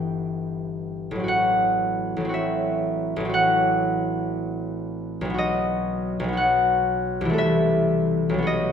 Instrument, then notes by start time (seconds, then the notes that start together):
harp
Already playing: G1 E3 B3 G4 G5 B5
1.11 A1
1.15 F#3
1.20 C4
1.24 F#4
1.28 F#5
2.17 A1
2.21 F#3
2.25 C4
2.29 F#4
2.34 E5
3.16 A1
3.20 F#3
3.25 C4
3.29 F#4
3.34 F#5
5.21 B1 F#3
5.30 B3
5.34 F#4
5.38 D#5
6.20 B1
6.24 F#3
6.29 B3
6.33 F#4
6.37 F#5
7.21 C2
7.25 E3
7.30 A3 A4
7.38 E5
8.29 B1
8.34 F#3
8.38 B3
8.42 F#4
8.47 D#5